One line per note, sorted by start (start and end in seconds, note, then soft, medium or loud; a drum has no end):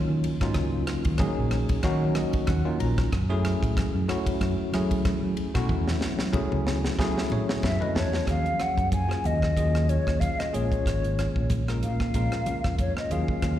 0.00 0.37 F#3 medium
0.00 0.37 A#3 medium
0.00 0.36 C#4 medium
0.00 0.36 D#4 medium
0.00 0.37 F4 medium
0.09 0.21 D#3 medium
0.24 muted fingered electric bass stroke soft
0.24 ride medium
0.24 muted conga soft
0.40 0.52 G#2 medium
0.40 1.16 F#3 medium
0.40 1.16 A#3 medium
0.40 1.16 C#4 medium
0.40 1.16 D#4 medium
0.40 1.17 F4 medium
0.40 kick medium
0.40 cross-stick medium
0.40 ride medium
0.54 0.81 C#2 loud
0.54 kick medium
0.54 cross-stick medium
0.54 ride medium
0.54 muted conga soft
0.87 cross-stick medium
0.87 ride medium
0.87 muted conga soft
1.05 1.17 D#3 medium
1.05 kick medium
1.05 ride medium
1.18 1.81 F#3 medium
1.18 1.81 A#3 medium
1.18 1.81 C#4 medium
1.18 1.81 D#4 medium
1.18 1.81 G#4 medium
1.18 kick loud
1.18 cross-stick medium
1.18 ride medium
1.18 high conga medium
1.18 low conga medium
1.38 1.64 A#1 medium
1.51 cross-stick medium
1.51 ride medium
1.69 kick medium
1.69 ride medium
1.83 2.10 D#3 medium
1.83 2.62 F#3 medium
1.83 2.62 A#3 medium
1.83 2.62 C#4 medium
1.83 2.62 D#4 medium
1.83 2.62 F#4 loud
1.83 kick medium
1.83 cross-stick medium
1.83 ride medium
2.15 2.46 D#5 medium
2.15 cross-stick medium
2.15 ride medium
2.15 high conga medium
2.33 kick medium
2.33 ride medium
2.47 2.63 D#2 medium
2.47 2.78 F#5 medium
2.47 kick loud
2.47 cross-stick medium
2.47 ride medium
2.47 high conga medium
2.65 3.12 F#3 medium
2.65 3.12 A#3 medium
2.65 3.12 C#4 medium
2.65 3.12 D#4 medium
2.65 3.12 F4 medium
2.80 3.07 A#1 medium
2.80 3.10 A#5 medium
2.80 ride medium
2.80 muted conga soft
2.98 kick medium
2.98 cross-stick medium
2.98 ride medium
3.12 3.53 F#2 loud
3.12 kick medium
3.12 cross-stick medium
3.12 ride medium
3.12 muted conga soft
3.30 4.05 F#3 medium
3.30 4.05 A3 medium
3.30 4.05 C#4 medium
3.30 4.05 E4 medium
3.30 4.05 G#4 loud
3.45 cross-stick medium
3.45 ride medium
3.45 muted conga soft
3.63 3.74 A2 medium
3.63 kick medium
3.63 ride medium
3.77 kick loud
3.77 cross-stick medium
3.77 ride medium
3.77 high conga medium
3.95 4.06 F#2 medium
4.08 4.70 F#3 medium
4.08 4.70 A3 medium
4.08 4.71 C#4 medium
4.08 4.71 E4 medium
4.08 4.71 F#4 medium
4.08 cross-stick medium
4.08 ride medium
4.26 muted fingered electric bass stroke soft
4.26 kick medium
4.26 ride medium
4.41 4.56 F#2 loud
4.41 kick medium
4.41 cross-stick medium
4.41 ride medium
4.59 muted fingered electric bass stroke soft
4.72 5.13 F#3 medium
4.72 5.51 F#3 medium
4.72 5.51 A3 medium
4.72 5.52 C#4 medium
4.72 5.52 E4 medium
4.72 5.52 G#4 medium
4.72 cross-stick medium
4.72 ride medium
4.72 high conga medium
4.91 kick medium
4.91 ride medium
5.05 kick loud
5.05 cross-stick medium
5.05 ride medium
5.05 high conga medium
5.23 5.35 F#3 medium
5.37 muted fingered electric bass stroke soft
5.37 ride medium
5.37 muted conga soft
5.54 5.67 B2 medium
5.54 6.30 F#3 medium
5.54 6.30 A3 medium
5.54 6.30 C#4 medium
5.54 6.31 E4 medium
5.54 6.31 F#4 loud
5.54 kick medium
5.54 cross-stick medium
5.54 ride medium
5.69 5.95 E2 loud
5.69 kick medium
5.69 high tom medium
5.69 muted conga soft
5.88 snare medium
6.01 snare medium
6.01 muted conga soft
6.19 6.32 F#3 medium
6.19 snare medium
6.33 6.95 F#3 medium
6.33 6.95 A3 medium
6.33 6.95 C#4 medium
6.33 6.95 E4 medium
6.33 6.95 G#4 medium
6.33 kick loud
6.33 mid tom medium
6.33 high conga medium
6.33 low conga medium
6.52 6.79 C#2 medium
6.52 mid tom medium
6.67 snare medium
6.85 snare medium
6.98 7.24 F#3 medium
6.98 7.76 F#3 medium
6.98 7.77 A3 medium
6.98 7.77 C#4 medium
6.98 7.77 E4 medium
6.98 7.77 G#4 loud
6.98 kick medium
6.98 snare medium
7.18 snare medium
7.30 7.62 C#5 medium
7.30 mid tom medium
7.30 high conga medium
7.49 snare medium
7.63 7.78 F#2 medium
7.63 7.84 E5 medium
7.63 7.94 E5 medium
7.63 kick loud
7.63 snare medium
7.63 high conga medium
7.80 8.25 F#3 medium
7.80 8.27 A3 medium
7.80 8.25 C#4 medium
7.80 8.28 E4 medium
7.80 8.28 B4 medium
7.80 7.96 D#5 medium
7.80 floor tom medium
7.95 8.21 E2 medium
7.95 8.26 C#5 medium
7.95 8.25 A5 medium
7.95 snare medium
7.95 muted conga soft
8.13 snare medium
8.26 8.42 D#2 medium
8.26 9.05 F3 medium
8.26 9.05 F#3 medium
8.26 9.05 A#3 soft
8.26 9.05 C#4 medium
8.26 9.05 G#4 medium
8.26 8.62 F5 medium
8.26 kick medium
8.26 cross-stick medium
8.26 closed hi-hat medium
8.46 closed hi-hat soft
8.59 8.92 F#5 medium
8.59 muted fingered electric bass stroke soft
8.59 cross-stick medium
8.59 closed hi-hat medium
8.59 muted conga soft
8.77 9.15 F#2 medium
8.77 kick medium
8.77 closed hi-hat soft
8.92 9.27 G#5 medium
8.92 kick medium
8.92 closed hi-hat medium
8.92 high conga medium
9.08 9.54 F#3 medium
9.08 9.54 A#3 soft
9.08 9.53 C#4 medium
9.08 9.54 F4 medium
9.08 9.54 G#4 medium
9.08 cross-stick medium
9.08 closed hi-hat soft
9.24 9.50 D#2 medium
9.24 9.91 D#5 medium
9.24 closed hi-hat medium
9.24 high conga medium
9.42 kick medium
9.42 cross-stick medium
9.56 9.97 D#2 medium
9.56 10.53 F#3 medium
9.56 10.52 A#3 medium
9.56 10.52 C#4 medium
9.56 10.52 F4 medium
9.56 10.53 G#4 medium
9.56 kick medium
9.56 closed hi-hat medium
9.56 muted conga soft
9.75 cross-stick medium
9.75 closed hi-hat soft
9.89 10.21 C#5 medium
9.89 closed hi-hat medium
10.07 10.18 D#2 medium
10.07 kick medium
10.07 cross-stick medium
10.07 closed hi-hat soft
10.20 10.41 F5 medium
10.20 kick medium
10.20 closed hi-hat medium
10.20 high conga medium
10.39 10.56 D#5 medium
10.39 muted fingered electric bass stroke soft
10.39 cross-stick medium
10.39 closed hi-hat soft
10.53 10.69 A#1 medium
10.53 11.61 G#3 medium
10.53 11.62 A#3 medium
10.53 11.62 C#4 medium
10.53 11.62 F4 medium
10.53 11.62 G#4 medium
10.53 11.51 C#5 medium
10.53 closed hi-hat medium
10.53 muted conga soft
10.72 kick medium
10.72 closed hi-hat soft
10.86 11.26 G#1 medium
10.86 kick medium
10.86 cross-stick medium
10.86 closed hi-hat medium
10.86 muted conga soft
11.04 closed hi-hat soft
11.19 cross-stick medium
11.19 closed hi-hat medium
11.19 muted conga soft
11.36 11.84 A#1 medium
11.36 kick medium
11.50 kick loud
11.50 closed hi-hat medium
11.50 high conga medium
11.68 12.12 G#3 medium
11.68 12.13 A#3 medium
11.68 12.13 C#4 medium
11.68 12.13 F4 medium
11.68 12.13 A#4 medium
11.68 cross-stick medium
11.68 closed hi-hat soft
11.83 12.09 A#2 medium
11.83 12.75 F5 medium
11.83 closed hi-hat soft
12.00 kick medium
12.00 cross-stick medium
12.14 12.29 A#1 medium
12.14 13.11 G#3 medium
12.14 13.09 A#3 medium
12.14 13.10 C#4 medium
12.14 13.10 F4 medium
12.14 13.12 A#4 medium
12.14 kick medium
12.14 closed hi-hat medium
12.14 muted conga soft
12.32 cross-stick medium
12.32 closed hi-hat soft
12.46 muted fingered electric bass stroke soft
12.46 closed hi-hat medium
12.46 high conga medium
12.46 low conga medium
12.64 12.91 F2 medium
12.64 kick medium
12.64 cross-stick medium
12.64 closed hi-hat soft
12.79 12.96 C#5 medium
12.79 kick medium
12.79 closed hi-hat medium
12.79 high conga medium
12.96 13.14 D#5 medium
12.96 muted fingered electric bass stroke soft
12.96 cross-stick medium
13.10 13.25 D#2 medium
13.10 13.59 F#3 medium
13.10 13.59 A#3 medium
13.10 13.59 C#4 medium
13.10 13.59 F4 medium
13.10 13.59 G#4 medium
13.10 13.59 F5 medium
13.10 closed hi-hat medium
13.10 muted conga soft
13.28 kick medium
13.42 13.57 D#2 medium
13.42 kick medium
13.42 cross-stick medium
13.42 closed hi-hat medium
13.42 muted conga soft